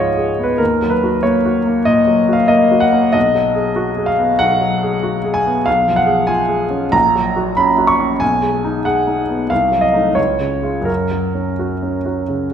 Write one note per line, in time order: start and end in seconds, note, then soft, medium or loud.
0.00 0.62 C#2 soft
0.00 0.62 G#2 soft
0.00 0.63 F3 soft
0.00 0.39 B3 soft
0.00 0.62 F4 soft
0.00 0.17 G#4 soft
0.00 0.43 C#5 medium
0.00 0.62 D#5 medium
0.00 0.62 F5 medium
0.00 0.62 F#5 medium
0.17 0.51 G#4 soft
0.39 0.60 B3 soft
0.43 0.60 B4 medium
0.58 1.83 D#2 soft
0.58 0.91 A#4 medium
0.82 1.16 F#3 soft
0.90 1.23 B4 medium
1.04 1.37 F#4 soft
1.23 1.58 A#3 soft
1.23 1.86 C#5 medium
1.45 1.79 F#4 soft
1.66 1.99 A#3 soft
1.85 2.21 A#2 soft
1.85 2.34 D#5 medium
2.07 2.42 F#3 soft
2.29 2.64 F#4 soft
2.33 2.50 F5 medium
2.48 2.85 A#3 soft
2.48 2.82 D#5 medium
2.72 3.06 F#4 soft
2.80 3.14 F#5 medium
2.93 3.15 A#3 soft
3.13 4.36 B1 soft
3.13 4.08 D#5 medium
3.35 3.69 F#3 soft
3.55 3.89 G#4 soft
3.76 4.10 F#4 soft
3.97 4.32 G#4 soft
4.06 4.39 F5 medium
4.19 4.53 B3 soft
4.39 5.62 B1 soft
4.39 5.35 F#5 medium
4.61 4.95 F#3 soft
4.83 5.17 G#4 soft
5.03 5.37 F#4 soft
5.24 5.58 G#4 soft
5.34 5.66 G#5 medium
5.46 5.67 B3 soft
5.66 6.90 B1 soft
5.66 5.98 F5 medium
5.88 6.21 F3 soft
5.96 6.29 F#5 medium
6.06 6.41 G#4 soft
6.27 6.63 F4 soft
6.27 6.93 G#5 medium
6.49 6.84 G#4 soft
6.70 6.93 C#4 soft
6.92 8.16 A#1 medium
6.92 7.57 A#5 medium
7.15 7.49 F#3 soft
7.36 7.70 F#4 soft
7.57 7.91 C#4 soft
7.57 7.89 B5 medium
7.78 8.12 F#4 soft
7.87 8.20 C#6 medium
7.99 8.21 C#4 soft
8.20 9.47 B1 soft
8.20 8.85 G#5 medium
8.42 8.77 G#3 soft
8.64 8.99 D#4 soft
8.85 9.20 G#4 soft
8.85 9.50 F#5 medium
9.07 9.42 D#4 soft
9.30 9.51 B3 soft
9.50 10.15 C2 soft
9.50 9.83 F5 medium
9.72 10.08 F#3 soft
9.81 10.16 D#5 medium
9.93 10.14 A3 soft
9.93 10.15 D#4 soft
10.15 10.86 C#2 soft
10.15 10.87 C#5 medium
10.39 10.78 C#3 soft
10.62 10.85 G#3 soft
10.62 10.86 F4 soft
10.81 12.23 F#2 soft
10.81 12.54 A#4 medium
11.11 11.50 F#3 soft
11.35 11.73 C#4 soft
11.59 11.97 F#4 soft
11.83 12.20 C#4 soft
12.06 12.44 F#4 soft
12.28 12.54 C#3 soft